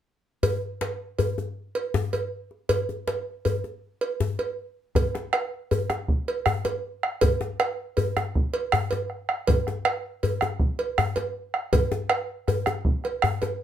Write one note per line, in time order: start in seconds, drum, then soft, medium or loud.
0.43 cowbell medium
0.43 djembe bass medium
0.81 cowbell soft
0.81 djembe slap medium
1.19 cowbell soft
1.19 djembe bass medium
1.38 djembe slap soft
1.38 djembe tone medium
1.75 cowbell soft
1.94 djembe slap medium
1.94 djembe bass medium
2.13 cowbell soft
2.13 djembe tone soft
2.51 djembe slap soft
2.69 cowbell medium
2.69 djembe bass medium
2.89 djembe tone soft
3.07 cowbell soft
3.07 djembe slap medium
3.45 cowbell soft
3.45 djembe bass medium
3.64 djembe slap soft
3.64 djembe tone soft
4.01 cowbell soft
4.20 djembe slap medium
4.20 djembe bass medium
4.39 cowbell soft
4.39 djembe tone soft
4.95 bombo rim soft
4.95 bombo low medium
4.95 cowbell soft
4.95 djembe bass medium
5.15 bombo rim soft
5.15 djembe slap medium
5.15 djembe tone soft
5.33 bombo rim medium
5.33 cowbell soft
5.33 djembe slap soft
5.71 cowbell soft
5.71 djembe bass medium
5.90 bombo rim medium
5.90 djembe slap medium
5.90 djembe tone medium
6.08 bombo low medium
6.08 djembe slap soft
6.28 cowbell soft
6.46 bombo rim medium
6.46 djembe slap soft
6.46 djembe bass medium
6.65 cowbell soft
6.65 djembe slap medium
6.65 djembe tone medium
7.03 bombo rim medium
7.21 bombo rim soft
7.21 bombo low medium
7.21 cowbell medium
7.21 djembe bass medium
7.41 bombo rim soft
7.41 djembe slap medium
7.41 djembe tone medium
7.60 bombo rim medium
7.60 cowbell soft
7.60 djembe slap soft
7.97 cowbell soft
7.97 djembe bass medium
8.17 bombo rim medium
8.17 djembe slap medium
8.17 djembe tone medium
8.35 bombo low medium
8.35 djembe slap soft
8.54 cowbell soft
8.72 bombo rim medium
8.72 djembe slap soft
8.72 djembe bass medium
8.91 cowbell soft
8.91 djembe slap medium
8.91 djembe tone soft
9.10 bombo rim soft
9.29 bombo rim medium
9.47 bombo rim soft
9.47 bombo low medium
9.47 cowbell medium
9.47 djembe bass medium
9.67 bombo rim soft
9.67 djembe slap soft
9.67 djembe tone soft
9.85 bombo rim medium
9.85 cowbell soft
9.85 djembe slap soft
10.23 cowbell soft
10.23 djembe bass medium
10.41 bombo rim medium
10.41 djembe slap soft
10.41 djembe tone soft
10.60 bombo low medium
10.60 djembe slap soft
10.79 cowbell soft
10.98 bombo rim medium
10.98 djembe slap soft
10.98 djembe bass medium
11.16 cowbell soft
11.16 djembe slap medium
11.16 djembe tone medium
11.54 bombo rim medium
11.73 bombo rim soft
11.73 bombo low medium
11.73 cowbell medium
11.73 djembe bass medium
11.92 bombo rim soft
11.92 djembe slap medium
11.92 djembe tone medium
12.09 bombo rim medium
12.09 cowbell soft
12.48 bombo rim soft
12.48 cowbell soft
12.48 djembe bass medium
12.66 bombo rim medium
12.66 djembe slap soft
12.66 djembe tone medium
12.85 bombo low medium
13.04 bombo rim soft
13.04 cowbell soft
13.04 djembe slap soft
13.22 bombo rim medium
13.22 djembe slap soft
13.22 djembe bass medium
13.42 cowbell soft
13.42 djembe slap medium
13.42 djembe tone soft